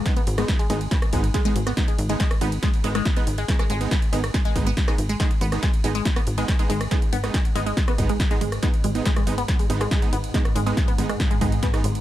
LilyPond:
<<
  \new Staff \with { instrumentName = "Supersaw synth" } { \time 4/4 \key gis \minor \tempo 4 = 140 <gis b dis'>16 r8 <gis b dis'>16 r8 <gis b dis'>16 r8. <gis b dis'>16 r8 <gis b dis'>16 r8 | <gis b dis'>16 r8 <gis b dis'>16 r8 <gis b dis'>16 r8. <gis b dis'>16 r8 <gis b dis'>16 r8 | <gis b dis'>16 r8 <gis b dis'>16 r8 <gis b dis'>16 r8. <gis b dis'>16 r8 <gis b dis'>16 r8 | <gis b dis'>16 r8 <gis b dis'>16 r8 <gis b dis'>16 r4 <gis b dis'>16 r16 <gis b dis'>16 r8 |
<gis b dis'>16 r8 <gis b dis'>16 r8 <gis b dis'>16 r8. <gis b dis'>16 r8 <gis b dis'>16 r8 | <gis b dis'>16 r8 <gis b dis'>16 r8 <gis b dis'>16 r8. <gis b dis'>16 r8 <gis b dis'>16 r8 | <gis b dis'>16 r8 <gis b dis'>16 r8 <gis b dis'>16 r8. <gis b dis'>16 r8 <gis b dis'>16 r8 | }
  \new Staff \with { instrumentName = "Synth arpeggio sound" } { \clef bass \time 4/4 \key gis \minor r16 b16 r16 gis16 r16 gis16 gis16 r16 b16 r16 gis16 r16 gis16 gis16 r16 b16 | r16 gis16 r16 gis16 gis16 r16 b16 r16 gis16 r16 gis16 gis16 r16 b16 r16 gis16 | r16 gis16 gis16 r16 b16 r16 gis16 r16 gis16 gis16 r16 b16 r16 gis16 r16 gis16 | gis16 r16 b16 r16 gis16 r16 gis16 gis16 r16 b16 r16 gis16 r16 gis16 gis16 r16 |
gis16 r16 b16 r16 gis16 r16 gis16 gis16 r16 b16 r16 gis16 r16 gis16 gis16 r16 | b16 r16 gis16 r16 gis16 gis16 r16 b16 r16 gis16 r16 gis16 gis16 r16 b16 r16 | gis16 r16 gis16 gis16 r16 b16 r16 gis16 r16 gis16 gis16 r16 b16 r16 gis16 r16 | }
  \new Staff \with { instrumentName = "Synth drone" } { \clef bass \time 4/4 \key gis \minor r1 | r1 | r1 | r1 |
gis,1~ | gis,1~ | gis,1 | }
  \new Staff \with { instrumentName = "Analog synth bass" } { \clef bass \time 4/4 \key gis \minor r8 gis,,8 r8 gis,,8 r8 gis,,8 r8 gis,,8 | r8 gis,,8 r8 gis,,8 r8 gis,,8 r8 gis,,8 | r8 gis,,8 r8 gis,,8 r8 gis,,8 r8 gis,,8 | r8 gis,,8 r8 gis,,8 r8 gis,,8 r8 gis,,8 |
r8 gis,,8 r8 gis,,8 r8 gis,,8 r8 gis,,8 | r8 gis,,8 r8 gis,,8 r8 gis,,8 r8 gis,,8 | r8 gis,,8 r8 gis,,8 r8 gis,,8 r8 gis,,8 | }
  \new DrumStaff \with { instrumentName = "Drums" } \drummode { \time 4/4 <hh bd cymr sn>16 <hh cymr>16 <hho cymr>16 <hh cymr ss>16 <hh bd cymr sn>16 <hh cymr>16 <hho cymr>16 <hh cymr>16 <hh bd cymr sn>16 <hh cymr ss>16 <hho bd cymr>16 <hh cymr>16 <hh bd cymr sn>16 <hh cymr>16 <hho cymr>16 <hh cymr ss>16 | <hh bd cymr sn>16 <hh cymr>16 <hho cymr>16 <hh cymr>16 <hh bd cymr sn>16 <hh cymr ss>16 <hho cymr>16 <hh cymr>16 <hh bd cymr sn>16 <hho cymr>16 <hho cymr>16 <hh cymr ss>16 <hh bd cymr sn>16 <hh cymr>16 <hho cymr>16 <hh cymr>16 | <hh bd cymr sn>16 <hh cymr ss>16 <hho cymr>16 <hh cymr>16 <hh bd cymr sn>16 <hh cymr>16 <hho cymr>16 <hh cymr ss>16 <hh bd cymr sn>16 <hh cymr>16 <hho bd cymr>16 <hh cymr>16 <hh bd cymr sn>16 <hh cymr ss>16 <hho cymr>16 <hh cymr>16 | <hh bd cymr sn>16 <hh cymr>16 <hho cymr>16 <hh cymr ss>16 <hh bd cymr sn>16 <hh cymr>16 <hho cymr>16 <hh cymr>16 <hh bd cymr sn>16 <hho cymr ss>16 <hho cymr>16 <hh cymr>16 <hh bd cymr sn>16 <hh cymr>16 <hho cymr>16 <hh cymr ss>16 |
<hh bd cymr sn>16 <hh cymr>16 <hho cymr>16 <hh cymr ss>16 <hh bd cymr sn>16 <hh cymr>16 <hho cymr>16 <hh cymr>16 <hh bd cymr sn>16 <hh cymr ss>16 <hho bd cymr>16 <hh cymr>16 <hh bd cymr sn>16 <hh cymr>16 <hho cymr>16 <hh cymr ss>16 | <hh bd cymr sn>16 <hh cymr>16 <hho cymr>16 <hh cymr>16 <hh bd cymr sn>16 <hh cymr ss>16 <hho cymr>16 <hh cymr>16 <hh bd cymr sn>16 <hho cymr>16 <hho cymr>16 <hh cymr ss>16 <hh bd cymr sn>16 <hh cymr>16 <hho cymr>16 <hh cymr>16 | <hh bd cymr sn>16 <hh cymr ss>16 <hho cymr>16 <hh cymr>16 <hh bd cymr sn>16 <hh cymr>16 <hho cymr>16 <hh cymr ss>16 <hh bd cymr sn>16 <hh cymr>16 <hho bd cymr>16 <hh cymr>16 <hh bd cymr sn>16 <hh cymr ss>16 <hho cymr>16 <hh cymr>16 | }
>>